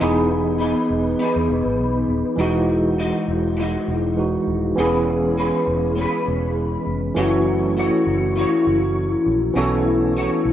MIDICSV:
0, 0, Header, 1, 4, 480
1, 0, Start_track
1, 0, Key_signature, 4, "major"
1, 0, Tempo, 597134
1, 2, Time_signature, 4, 2, 24, 8
1, 8464, End_track
2, 0, Start_track
2, 0, Title_t, "Clean electric guitar"
2, 0, Program_c, 0, 27
2, 2, Note_on_c, 0, 52, 86
2, 6, Note_on_c, 0, 59, 86
2, 8, Note_on_c, 0, 63, 74
2, 12, Note_on_c, 0, 68, 76
2, 15, Note_on_c, 0, 71, 86
2, 467, Note_off_c, 0, 59, 0
2, 470, Note_on_c, 0, 59, 58
2, 479, Note_off_c, 0, 63, 0
2, 483, Note_off_c, 0, 68, 0
2, 483, Note_on_c, 0, 63, 68
2, 486, Note_on_c, 0, 68, 71
2, 492, Note_off_c, 0, 71, 0
2, 495, Note_on_c, 0, 71, 63
2, 507, Note_off_c, 0, 52, 0
2, 955, Note_off_c, 0, 59, 0
2, 958, Note_on_c, 0, 59, 66
2, 974, Note_off_c, 0, 63, 0
2, 977, Note_on_c, 0, 63, 67
2, 987, Note_off_c, 0, 68, 0
2, 990, Note_on_c, 0, 68, 76
2, 998, Note_off_c, 0, 71, 0
2, 1002, Note_on_c, 0, 71, 67
2, 1917, Note_off_c, 0, 59, 0
2, 1920, Note_on_c, 0, 52, 77
2, 1921, Note_on_c, 0, 56, 70
2, 1927, Note_off_c, 0, 63, 0
2, 1929, Note_off_c, 0, 68, 0
2, 1930, Note_on_c, 0, 63, 77
2, 1932, Note_on_c, 0, 66, 82
2, 2396, Note_off_c, 0, 52, 0
2, 2399, Note_on_c, 0, 52, 60
2, 2400, Note_off_c, 0, 63, 0
2, 2403, Note_off_c, 0, 56, 0
2, 2404, Note_off_c, 0, 66, 0
2, 2407, Note_on_c, 0, 56, 65
2, 2409, Note_on_c, 0, 63, 70
2, 2413, Note_on_c, 0, 66, 68
2, 2864, Note_off_c, 0, 52, 0
2, 2867, Note_on_c, 0, 52, 64
2, 2885, Note_off_c, 0, 56, 0
2, 2886, Note_off_c, 0, 63, 0
2, 2888, Note_off_c, 0, 66, 0
2, 2889, Note_on_c, 0, 56, 66
2, 2898, Note_on_c, 0, 63, 69
2, 2911, Note_on_c, 0, 66, 77
2, 3815, Note_off_c, 0, 71, 0
2, 3840, Note_off_c, 0, 56, 0
2, 3841, Note_off_c, 0, 52, 0
2, 3841, Note_off_c, 0, 63, 0
2, 3844, Note_off_c, 0, 66, 0
2, 3844, Note_on_c, 0, 52, 76
2, 3844, Note_on_c, 0, 56, 78
2, 3844, Note_on_c, 0, 61, 82
2, 3848, Note_on_c, 0, 68, 85
2, 3858, Note_on_c, 0, 71, 81
2, 4311, Note_off_c, 0, 56, 0
2, 4320, Note_on_c, 0, 56, 57
2, 4321, Note_off_c, 0, 68, 0
2, 4327, Note_off_c, 0, 61, 0
2, 4328, Note_off_c, 0, 71, 0
2, 4330, Note_on_c, 0, 61, 61
2, 4331, Note_on_c, 0, 68, 70
2, 4338, Note_on_c, 0, 71, 66
2, 4778, Note_off_c, 0, 56, 0
2, 4787, Note_on_c, 0, 56, 61
2, 4800, Note_off_c, 0, 61, 0
2, 4803, Note_on_c, 0, 61, 67
2, 4807, Note_off_c, 0, 68, 0
2, 4810, Note_off_c, 0, 71, 0
2, 4820, Note_on_c, 0, 68, 63
2, 4834, Note_on_c, 0, 71, 77
2, 5754, Note_off_c, 0, 52, 0
2, 5755, Note_off_c, 0, 56, 0
2, 5757, Note_on_c, 0, 54, 78
2, 5761, Note_on_c, 0, 57, 90
2, 5764, Note_off_c, 0, 61, 0
2, 5768, Note_off_c, 0, 68, 0
2, 5768, Note_on_c, 0, 64, 82
2, 5769, Note_off_c, 0, 71, 0
2, 5771, Note_on_c, 0, 66, 86
2, 5773, Note_on_c, 0, 73, 82
2, 6241, Note_off_c, 0, 57, 0
2, 6244, Note_on_c, 0, 57, 64
2, 6248, Note_off_c, 0, 64, 0
2, 6251, Note_on_c, 0, 64, 59
2, 6255, Note_off_c, 0, 66, 0
2, 6258, Note_on_c, 0, 66, 68
2, 6263, Note_off_c, 0, 73, 0
2, 6266, Note_on_c, 0, 73, 72
2, 6275, Note_off_c, 0, 54, 0
2, 6713, Note_off_c, 0, 57, 0
2, 6716, Note_on_c, 0, 57, 63
2, 6728, Note_off_c, 0, 64, 0
2, 6731, Note_on_c, 0, 64, 64
2, 6744, Note_off_c, 0, 66, 0
2, 6747, Note_on_c, 0, 66, 75
2, 6755, Note_off_c, 0, 73, 0
2, 6758, Note_on_c, 0, 73, 73
2, 7684, Note_on_c, 0, 52, 73
2, 7685, Note_on_c, 0, 47, 79
2, 7686, Note_off_c, 0, 57, 0
2, 7689, Note_off_c, 0, 64, 0
2, 7689, Note_on_c, 0, 57, 80
2, 7691, Note_off_c, 0, 66, 0
2, 7691, Note_off_c, 0, 73, 0
2, 7692, Note_on_c, 0, 64, 86
2, 7694, Note_on_c, 0, 66, 86
2, 7695, Note_on_c, 0, 73, 82
2, 8162, Note_off_c, 0, 57, 0
2, 8164, Note_off_c, 0, 47, 0
2, 8169, Note_off_c, 0, 73, 0
2, 8172, Note_on_c, 0, 57, 58
2, 8175, Note_off_c, 0, 64, 0
2, 8178, Note_on_c, 0, 64, 61
2, 8181, Note_off_c, 0, 66, 0
2, 8184, Note_on_c, 0, 66, 59
2, 8184, Note_on_c, 0, 73, 69
2, 8208, Note_off_c, 0, 52, 0
2, 8464, Note_off_c, 0, 57, 0
2, 8464, Note_off_c, 0, 64, 0
2, 8464, Note_off_c, 0, 66, 0
2, 8464, Note_off_c, 0, 73, 0
2, 8464, End_track
3, 0, Start_track
3, 0, Title_t, "Tine electric piano"
3, 0, Program_c, 1, 4
3, 0, Control_c, 1, 64, 127
3, 0, Note_on_c, 1, 52, 68
3, 0, Note_on_c, 1, 59, 68
3, 6, Note_on_c, 1, 63, 73
3, 11, Control_c, 1, 64, 0
3, 24, Note_on_c, 1, 68, 86
3, 162, Control_c, 1, 64, 127
3, 1879, Note_off_c, 1, 52, 0
3, 1885, Note_off_c, 1, 59, 0
3, 1892, Note_off_c, 1, 63, 0
3, 1897, Note_on_c, 1, 52, 74
3, 1901, Note_off_c, 1, 68, 0
3, 1910, Note_on_c, 1, 56, 68
3, 1921, Note_on_c, 1, 63, 66
3, 1934, Control_c, 1, 64, 0
3, 1936, Note_on_c, 1, 66, 74
3, 2051, Control_c, 1, 64, 127
3, 3321, Note_off_c, 1, 52, 0
3, 3328, Note_off_c, 1, 56, 0
3, 3333, Note_off_c, 1, 63, 0
3, 3341, Note_off_c, 1, 66, 0
3, 3350, Note_on_c, 1, 52, 53
3, 3353, Note_on_c, 1, 56, 48
3, 3362, Note_on_c, 1, 63, 46
3, 3369, Note_on_c, 1, 66, 62
3, 3814, Note_off_c, 1, 52, 0
3, 3823, Note_on_c, 1, 52, 77
3, 3833, Note_on_c, 1, 59, 73
3, 3838, Note_off_c, 1, 56, 0
3, 3842, Note_off_c, 1, 63, 0
3, 3845, Note_on_c, 1, 61, 62
3, 3846, Note_off_c, 1, 66, 0
3, 3854, Control_c, 1, 64, 0
3, 3859, Note_on_c, 1, 68, 84
3, 4013, Control_c, 1, 64, 127
3, 5721, Note_off_c, 1, 52, 0
3, 5726, Note_off_c, 1, 59, 0
3, 5732, Note_off_c, 1, 61, 0
3, 5739, Note_off_c, 1, 68, 0
3, 5743, Note_on_c, 1, 52, 79
3, 5757, Note_on_c, 1, 57, 71
3, 5769, Note_on_c, 1, 61, 68
3, 5772, Control_c, 1, 64, 0
3, 5783, Note_on_c, 1, 66, 84
3, 5920, Control_c, 1, 64, 127
3, 7641, Note_off_c, 1, 52, 0
3, 7648, Note_off_c, 1, 57, 0
3, 7654, Note_off_c, 1, 61, 0
3, 7661, Note_off_c, 1, 66, 0
3, 7663, Note_on_c, 1, 52, 73
3, 7679, Note_on_c, 1, 59, 67
3, 7689, Note_on_c, 1, 61, 70
3, 7692, Control_c, 1, 64, 0
3, 7704, Note_on_c, 1, 69, 83
3, 7822, Control_c, 1, 64, 127
3, 8464, Note_off_c, 1, 52, 0
3, 8464, Note_off_c, 1, 59, 0
3, 8464, Note_off_c, 1, 61, 0
3, 8464, Note_off_c, 1, 69, 0
3, 8464, End_track
4, 0, Start_track
4, 0, Title_t, "Fingered electric bass"
4, 0, Program_c, 2, 33
4, 11, Note_on_c, 2, 28, 92
4, 588, Note_off_c, 2, 28, 0
4, 726, Note_on_c, 2, 28, 89
4, 916, Note_off_c, 2, 28, 0
4, 1093, Note_on_c, 2, 40, 80
4, 1180, Note_off_c, 2, 40, 0
4, 1203, Note_on_c, 2, 28, 91
4, 1308, Note_off_c, 2, 28, 0
4, 1332, Note_on_c, 2, 32, 75
4, 1419, Note_off_c, 2, 32, 0
4, 1440, Note_on_c, 2, 35, 81
4, 1633, Note_off_c, 2, 35, 0
4, 1672, Note_on_c, 2, 27, 82
4, 1782, Note_off_c, 2, 27, 0
4, 1909, Note_on_c, 2, 28, 92
4, 2497, Note_off_c, 2, 28, 0
4, 2637, Note_on_c, 2, 28, 88
4, 3023, Note_off_c, 2, 28, 0
4, 3119, Note_on_c, 2, 28, 86
4, 3505, Note_off_c, 2, 28, 0
4, 3595, Note_on_c, 2, 27, 78
4, 3790, Note_off_c, 2, 27, 0
4, 3839, Note_on_c, 2, 28, 93
4, 4422, Note_off_c, 2, 28, 0
4, 4560, Note_on_c, 2, 28, 90
4, 4859, Note_off_c, 2, 28, 0
4, 5047, Note_on_c, 2, 28, 93
4, 5430, Note_off_c, 2, 28, 0
4, 5520, Note_on_c, 2, 29, 78
4, 5713, Note_off_c, 2, 29, 0
4, 5758, Note_on_c, 2, 30, 84
4, 6342, Note_off_c, 2, 30, 0
4, 6485, Note_on_c, 2, 30, 101
4, 6782, Note_off_c, 2, 30, 0
4, 6968, Note_on_c, 2, 30, 101
4, 7350, Note_off_c, 2, 30, 0
4, 7447, Note_on_c, 2, 34, 92
4, 7637, Note_off_c, 2, 34, 0
4, 7682, Note_on_c, 2, 35, 94
4, 8264, Note_off_c, 2, 35, 0
4, 8402, Note_on_c, 2, 35, 91
4, 8464, Note_off_c, 2, 35, 0
4, 8464, End_track
0, 0, End_of_file